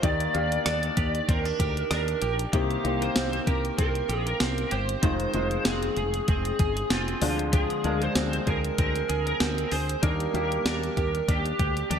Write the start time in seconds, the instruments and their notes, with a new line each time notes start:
Already playing: clean electric guitar G#3 C4
0.02 fretless electric bass D#2, grand piano D#3 A#3 D#4 G4 D5, clean electric guitar D#3, lead electric guitar D5, kick, closed hi-hat
0.20 closed hi-hat
0.34 fretless electric bass D#2, grand piano A#3 D4 G4 F5, clean electric guitar A#3, closed hi-hat
0.52 closed hi-hat
0.66 fretless electric bass D#2, clean electric guitar D4, lead electric guitar D5, cross-stick, closed hi-hat
0.83 closed hi-hat
0.97 fretless electric bass D#2, clean electric guitar G4, kick, closed hi-hat
1.15 closed hi-hat
1.28 fretless electric bass D#2, clean electric guitar C4, lead electric guitar A#4, kick, closed hi-hat
1.45 clean electric guitar D4, closed hi-hat
1.60 fretless electric bass D2, clean electric guitar G4, kick, closed hi-hat
1.77 closed hi-hat
1.91 fretless electric bass D#2, clean electric guitar D4, lead electric guitar A#4, cross-stick, closed hi-hat
2.08 closed hi-hat
2.22 fretless electric bass A#1, clean electric guitar G4, closed hi-hat
2.39 closed hi-hat
2.53 fretless electric bass C2, grand piano C3 A#3 D#4 G4 C5, clean electric guitar D#3, lead electric guitar G4, kick, closed hi-hat
2.71 closed hi-hat
2.84 fretless electric bass C2, grand piano A#3 D#4 G4 C5, clean electric guitar A#3, closed hi-hat
3.02 lead electric guitar C5, closed hi-hat
3.16 fretless electric bass C2, clean electric guitar C4, snare, closed hi-hat
3.33 closed hi-hat
3.47 fretless electric bass C2, clean electric guitar G4, lead electric guitar A#4, kick, closed hi-hat
3.65 closed hi-hat
3.78 fretless electric bass C2, clean electric guitar C4, lead electric guitar A#4, kick, closed hi-hat
3.95 closed hi-hat
4.09 fretless electric bass A#1, clean electric guitar G4, closed hi-hat
4.27 lead electric guitar A#4, closed hi-hat
4.40 fretless electric bass C2, clean electric guitar C4, snare, closed hi-hat
4.58 closed hi-hat
4.71 fretless electric bass G1, clean electric guitar G4, lead electric guitar C5, closed hi-hat
4.89 closed hi-hat
5.03 fretless electric bass F1, clean electric guitar D#3, grand piano G#3 D#4 F4 C5, lead electric guitar C5, kick, closed hi-hat
5.20 closed hi-hat
5.34 fretless electric bass F1, grand piano G#3 D#4 F4 C5, clean electric guitar G#3, closed hi-hat
5.51 closed hi-hat
5.65 fretless electric bass F1, clean electric guitar C4, lead electric guitar G#4, snare, closed hi-hat
5.83 closed hi-hat
5.97 fretless electric bass F1, clean electric guitar G#4, closed hi-hat
6.14 closed hi-hat
6.28 fretless electric bass F1, clean electric guitar C4, lead electric guitar G#4, kick, closed hi-hat
6.45 closed hi-hat
6.59 fretless electric bass G1, clean electric guitar G#4, kick, closed hi-hat
6.77 closed hi-hat
6.90 fretless electric bass F1, clean electric guitar C4, lead electric guitar F4, snare, closed hi-hat
7.08 closed hi-hat
7.21 fretless electric bass D2, grand piano D3 G#3 D4 F4 C5, clean electric guitar F3, open hi-hat
7.39 closed hi-hat
7.53 clean electric guitar F3, lead electric guitar G#4, kick, closed hi-hat
7.70 closed hi-hat
7.84 fretless electric bass D2, grand piano G#3 D4 F4 A#4, clean electric guitar G#3, closed hi-hat
8.02 lead electric guitar C5, closed hi-hat
8.15 fretless electric bass D2, clean electric guitar C4, snare, closed hi-hat
8.33 closed hi-hat
8.47 fretless electric bass D2, clean electric guitar G#4, lead electric guitar A#4, kick, closed hi-hat
8.65 closed hi-hat
8.78 fretless electric bass D2, clean electric guitar C4, lead electric guitar A#4, kick, closed hi-hat
8.96 closed hi-hat
9.09 fretless electric bass D2, clean electric guitar G#4, closed hi-hat
9.27 lead electric guitar A#4, closed hi-hat
9.40 fretless electric bass D2, clean electric guitar C4, snare, closed hi-hat
9.58 closed hi-hat
9.72 fretless electric bass D2, clean electric guitar G#4, lead electric guitar C5, open hi-hat
9.89 closed hi-hat
10.02 fretless electric bass D#2, grand piano D#3 G3 D4 D#4 A#4, clean electric guitar A#3, lead electric guitar A#4, kick, closed hi-hat
10.20 closed hi-hat
10.33 fretless electric bass D#2, grand piano G3 A#3 D4 G4, clean electric guitar A#3, closed hi-hat
10.52 closed hi-hat
10.65 fretless electric bass D#2, clean electric guitar D4, lead electric guitar A#4, snare, closed hi-hat
10.83 closed hi-hat
10.97 fretless electric bass D#2, clean electric guitar G4, kick, closed hi-hat
11.15 closed hi-hat
11.28 fretless electric bass D#2, clean electric guitar D4, lead electric guitar G4, kick, closed hi-hat
11.46 closed hi-hat
11.59 fretless electric bass D2, clean electric guitar G4, kick, closed hi-hat
11.77 closed hi-hat
11.90 fretless electric bass D#2, clean electric guitar D4, lead electric guitar G4, closed hi-hat, high tom